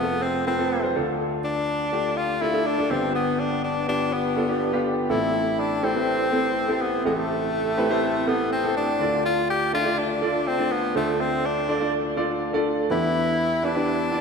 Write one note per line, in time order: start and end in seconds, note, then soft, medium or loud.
0.00 0.91 F1 medium
0.00 0.91 F2 medium
0.00 0.46 A3 medium
0.00 0.24 B3 loud
0.00 0.46 C4 medium
0.00 0.47 F4 medium
0.00 0.96 G#4 medium
0.00 0.04 A4 medium
0.00 0.40 A4 medium
0.23 0.47 C4 medium
0.46 0.56 A3 medium
0.46 0.56 C4 medium
0.46 0.92 C4 medium
0.46 0.56 F4 medium
0.46 0.56 B4 medium
0.58 0.78 A3 medium
0.58 0.78 C4 medium
0.58 0.78 F4 medium
0.58 0.78 A4 medium
0.82 0.93 A3 medium
0.82 0.95 C4 medium
0.82 0.94 F4 medium
0.82 0.95 C5 medium
0.95 2.86 D2 medium
0.95 2.86 D3 medium
0.95 1.74 A3 medium
0.95 1.74 D4 medium
0.95 1.74 F4 medium
0.95 1.74 A4 medium
1.44 2.19 D4 loud
1.92 2.32 A3 medium
1.92 2.32 D4 medium
1.92 2.32 F4 medium
1.92 2.32 G4 medium
2.17 2.43 F4 loud
2.41 2.51 A3 medium
2.41 2.51 D4 medium
2.41 2.68 E4 loud
2.41 2.51 F4 medium
2.41 2.52 A4 medium
2.53 2.73 A3 medium
2.53 2.73 D4 medium
2.53 2.73 F4 medium
2.53 2.73 A4 medium
2.66 2.92 D4 loud
2.78 2.90 A3 medium
2.78 2.89 D4 medium
2.78 2.89 F4 medium
2.78 2.90 A4 medium
2.90 4.81 G1 medium
2.90 4.81 G2 medium
2.90 3.69 B3 medium
2.90 3.14 C4 medium
2.90 3.69 D4 medium
2.90 3.69 F4 medium
2.90 3.70 G4 medium
3.15 3.41 B3 medium
3.40 3.63 D4 medium
3.64 3.86 D4 medium
3.87 4.27 B3 medium
3.87 4.27 D4 medium
3.87 4.14 D4 loud
3.87 4.27 F4 medium
3.87 4.27 G4 medium
4.13 4.86 B3 medium
4.36 4.46 B3 medium
4.36 4.46 D4 medium
4.36 4.46 F4 medium
4.36 4.46 A4 medium
4.48 4.68 B3 medium
4.48 4.68 D4 medium
4.48 4.68 F4 medium
4.48 4.69 G4 medium
4.72 5.02 B3 medium
4.72 5.03 D4 medium
4.72 5.03 F4 medium
4.72 5.03 G4 medium
5.09 7.01 A1 medium
5.09 7.01 A2 medium
5.09 5.68 A3 medium
5.09 5.69 C4 medium
5.09 5.69 E4 medium
5.09 5.61 E4 loud
5.09 5.69 G4 medium
5.09 5.69 A4 medium
5.59 5.85 D4 medium
5.82 5.92 A3 medium
5.82 5.92 C4 medium
5.82 6.83 C4 loud
5.82 5.93 E4 medium
5.82 5.93 G4 medium
5.82 5.93 A4 medium
5.94 6.24 A3 medium
5.94 6.24 C4 medium
5.94 6.25 E4 medium
5.94 6.25 G4 medium
5.94 6.25 B4 medium
6.31 6.61 A3 medium
6.31 6.61 C4 medium
6.31 6.61 E4 medium
6.31 6.61 G4 medium
6.31 6.61 A4 medium
6.67 6.97 A3 medium
6.67 6.98 C4 medium
6.67 6.98 E4 medium
6.67 6.98 G4 medium
6.67 6.98 A4 medium
6.81 7.05 B3 medium
7.04 8.96 A1 medium
7.04 8.96 A2 medium
7.04 7.64 A3 medium
7.04 8.29 A3 medium
7.04 7.64 C4 medium
7.04 7.64 E4 medium
7.04 7.64 G4 medium
7.04 7.64 A4 medium
7.77 7.87 A3 medium
7.77 7.87 C4 medium
7.77 7.88 E4 medium
7.77 7.88 G4 medium
7.77 7.88 B4 loud
7.89 8.19 A3 medium
7.89 8.20 C4 medium
7.89 8.20 E4 medium
7.89 8.20 G4 medium
7.89 8.20 C5 loud
8.26 8.56 A3 medium
8.26 8.52 B3 medium
8.26 8.56 C4 medium
8.26 8.56 E4 medium
8.26 8.57 G4 medium
8.26 8.57 A4 medium
8.52 8.74 C4 medium
8.63 8.93 A3 medium
8.63 8.93 C4 medium
8.63 8.93 E4 medium
8.63 8.93 G4 medium
8.63 8.93 A4 medium
8.77 9.22 D4 loud
8.99 10.91 D2 medium
8.99 10.91 D3 medium
8.99 9.59 A3 medium
8.99 9.59 D4 medium
8.99 9.59 F4 medium
8.99 9.59 A4 medium
8.99 9.59 D5 medium
9.25 9.48 F4 loud
9.50 9.72 G4 loud
9.73 9.83 A3 medium
9.73 9.83 D4 medium
9.73 9.83 F4 medium
9.73 10.00 F4 loud
9.73 9.83 A4 medium
9.73 9.83 E5 medium
9.84 10.14 A3 medium
9.84 10.15 D4 medium
9.84 10.15 F4 medium
9.84 10.15 A4 medium
9.84 10.15 D5 medium
9.99 10.49 D4 loud
10.21 10.51 A3 medium
10.21 10.51 D4 medium
10.21 10.51 F4 medium
10.21 10.52 A4 medium
10.21 10.52 D5 medium
10.47 10.74 C4 loud
10.58 10.88 A3 medium
10.58 10.88 D4 medium
10.58 10.88 F4 medium
10.58 10.88 A4 medium
10.58 10.88 D5 medium
10.72 10.96 B3 medium
10.95 12.86 D2 medium
10.95 12.86 D3 medium
10.95 11.54 A3 medium
10.95 11.22 A3 medium
10.95 11.54 D4 medium
10.95 11.54 F4 medium
10.95 11.54 A4 medium
10.95 11.55 C5 medium
11.21 11.47 C4 loud
11.45 11.93 D4 medium
11.68 11.78 A3 medium
11.68 11.78 D4 medium
11.68 11.78 F4 medium
11.68 11.78 A4 medium
11.68 11.78 D5 medium
11.80 12.10 A3 medium
11.80 12.10 D4 medium
11.80 12.10 F4 medium
11.80 12.10 A4 medium
11.80 12.10 D5 medium
12.16 12.46 A3 medium
12.16 12.46 D4 medium
12.16 12.47 F4 medium
12.16 12.47 A4 medium
12.16 12.47 D5 medium
12.53 12.83 A3 medium
12.53 12.83 D4 medium
12.53 12.83 F4 medium
12.53 12.83 A4 medium
12.53 12.83 D5 loud
12.90 14.21 E2 medium
12.90 14.21 E3 medium
12.90 13.49 B3 medium
12.90 13.49 D4 medium
12.90 13.49 E4 medium
12.90 13.66 E4 loud
12.90 13.50 G4 medium
12.90 13.50 B4 medium
13.62 13.73 B3 medium
13.62 13.73 D4 medium
13.62 14.21 D4 loud
13.62 13.73 E4 medium
13.62 13.73 G4 medium
13.62 13.73 B4 medium
13.75 14.05 B3 medium
13.75 14.05 D4 medium
13.75 14.05 E4 medium
13.75 14.05 G4 medium
13.75 14.05 B4 medium
14.11 14.21 B3 medium
14.11 14.21 D4 medium
14.11 14.21 E4 medium
14.11 14.21 G4 medium
14.11 14.21 D5 medium